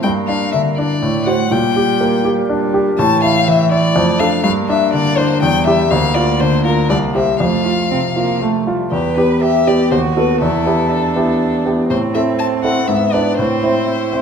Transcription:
0.03 grand piano G2, cello A#3, violin G5
0.28 grand piano D4, violin F5
0.52 grand piano D3, violin E5
0.77 grand piano D4, violin D5
1.02 grand piano A2, cello A3
1.26 grand piano F#4 C5, violin F#5
1.51 grand piano A#2, cello G3, violin G5
1.76 grand piano G4
2.01 grand piano A#3
2.25 grand piano G4
2.49 cello G3, grand piano D4
2.74 grand piano G4
2.98 grand piano A2, cello E3, violin A5
3.23 grand piano E4, violin F5
3.48 grand piano E3, violin E5
3.71 grand piano E4, violin D5
3.96 grand piano F2, cello A3
4.20 grand piano D4 A4, violin F5
4.44 grand piano G2, cello A#3, violin F5
4.68 grand piano D4, violin E5
4.93 grand piano D3, violin D5
5.17 grand piano D4, violin C5
5.42 grand piano E2, cello G3, violin G5
5.66 grand piano E4 G4, violin E5
5.90 grand piano D2, cello A#3, violin F5
6.14 grand piano F4, violin D5
6.40 grand piano D3, violin C5
6.65 grand piano F4, violin A#4
6.89 grand piano C2, cello A#3, violin D5
7.15 grand piano G4 C5, violin E5
7.40 grand piano F2, cello A3, violin F5
7.65 grand piano F4
7.91 grand piano C3, cello C4
8.16 cello A#3, grand piano F4
8.41 cello A3, grand piano A3
8.67 cello G3, grand piano F4
8.91 grand piano E2, violin G4, cello B4
9.17 grand piano B3 G4, violin B4
9.42 cello G4, violin E5
9.67 grand piano B3 G4, violin D5
9.91 grand piano D#2, cello F#4, violin C5
10.17 grand piano B3 F#4 A4, violin B4
10.42 grand piano E2, cello E4, violin A4
10.66 grand piano B3 E4 G4
10.91 cello D4
11.16 grand piano B3 E4 G4
11.65 grand piano B3 E4 G4
11.90 grand piano A2, cello C4, violin C5
12.14 grand piano C4 E4 A4, violin E5
12.39 violin A5
12.64 grand piano C4 E4 A4, violin F#5
12.88 grand piano G#2, cello B3, violin E5
13.12 grand piano D4 E4 B4, violin D5
13.38 grand piano A2, cello C4, violin C5
13.63 grand piano C4 E4 C5
13.87 cello E4
14.13 grand piano C4 E4 C5

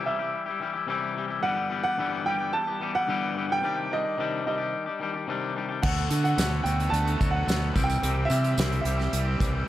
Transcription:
Already playing: clean electric guitar C3
0.04 clean electric guitar E3 G3 E4 G4, upright piano E5
0.19 clean electric guitar G3 E4 G4
0.46 clean electric guitar E4 G4
0.50 clean electric guitar G3
0.60 clean electric guitar E3 G3 E4 G4
0.73 clean electric guitar G3 E4 G4
0.87 clean electric guitar C3 E3 G3 E4 G4
1.16 clean electric guitar E3 G3 E4 G4
1.28 clean electric guitar G3 E4 G4
1.41 clean electric guitar G2 D3 E3 G3 B3 G4, upright piano F#5
1.55 clean electric guitar E3 G3 B3 G4
1.69 clean electric guitar E3 G3 B3 G4
1.84 upright piano F#5
1.97 clean electric guitar G2 D3 E3 G3 B3 G4
2.25 clean electric guitar E3 G3 B3 G4, upright piano G5
2.39 clean electric guitar E3 G3 B3 G4
2.53 upright piano A5
2.67 clean electric guitar E3 G3 B3 G4
2.80 clean electric guitar E3 G3 B3 G4
2.94 clean electric guitar E3 G3 B3 G4, upright piano F#5
3.07 clean electric guitar G2 D3 E3 G3 B3 G4
3.35 clean electric guitar E3 G3 B3 G4
3.48 clean electric guitar E3 G3 B3 G4, upright piano G5
3.61 clean electric guitar C3 D#3 G3 D4 G4
3.76 clean electric guitar G3 D4 G4
3.90 clean electric guitar D#3 G3 D4 G4, upright piano D#5
4.18 clean electric guitar C3 D#3 G3 D4 G4
4.45 clean electric guitar D#3 G3 D4 G4, upright piano D#5
4.58 clean electric guitar G3 D4 G4
4.86 clean electric guitar G3 D4 G4
5.00 clean electric guitar D#3 G3 D4 G4
5.14 clean electric guitar G3 D4 G4
5.27 clean electric guitar C3 D#3 G3 D4 G4
5.55 clean electric guitar D#3 G3 D4 G4
5.69 clean electric guitar G3 D4 G4
5.82 fingered electric bass D2, clean electric guitar D3 A3 B3 F#4, upright piano F#5, kick, crash
5.96 clean electric guitar A3 B3 F#4, closed hi-hat
6.08 clean electric guitar D3 A3 B3 F#4, fingered electric bass D3, closed hi-hat, tambourine
6.24 upright piano F#5, closed hi-hat, tambourine
6.36 fingered electric bass D2, clean electric guitar D3 A3 B3 F#4, snare, closed hi-hat, tambourine
6.63 fingered electric bass D2, clean electric guitar D3 A3 B3, distorted electric guitar F#4, upright piano G5, closed hi-hat
6.67 clean electric guitar F#4
6.78 clean electric guitar A3 B3 F#4, closed hi-hat, tambourine
6.90 fingered electric bass D2, distorted electric guitar A3, upright piano A5, closed hi-hat
7.05 clean electric guitar A3 B3 F#4, closed hi-hat
7.19 fingered electric bass D2, clean electric guitar D3 A3 B3 F#4, distorted electric guitar F#3, kick, closed hi-hat, tambourine
7.31 clean electric guitar B3 F#4, upright piano F#5
7.36 clean electric guitar A3
7.46 fingered electric bass D2, clean electric guitar D3 A3 B3 F#4, closed hi-hat, tambourine
7.50 snare
7.62 tambourine
7.73 fingered electric bass C2, clean electric guitar C3 E3 G3 C4 G4, kick, closed hi-hat, tambourine
7.84 clean electric guitar G4, upright piano G5
7.88 clean electric guitar G3 C4, closed hi-hat, tambourine
8.00 fingered electric bass C2, clean electric guitar C3 E3 G3 C4 G4, closed hi-hat
8.04 distorted electric guitar C3
8.15 clean electric guitar G3 C4 G4
8.25 clean electric guitar E3, upright piano E5
8.29 fingered electric bass C3, clean electric guitar G3 C4 G4, closed hi-hat, tambourine
8.44 closed hi-hat, tambourine
8.57 fingered electric bass C2, clean electric guitar C3 E3 G3 C4 G4, distorted electric guitar E4, snare, closed hi-hat, tambourine
8.72 closed hi-hat
8.81 fingered electric bass C2, clean electric guitar E3 G3, upright piano E5
8.85 clean electric guitar C4 G4, closed hi-hat
8.98 clean electric guitar G3 C4 G4, snare, tambourine
9.13 fingered electric bass C2, distorted electric guitar G3, closed hi-hat
9.25 clean electric guitar G3 C4 G4
9.38 fingered electric bass C2, clean electric guitar E3 G3 C4 G4, kick, closed hi-hat, tambourine
9.53 clean electric guitar G3 C4 G4

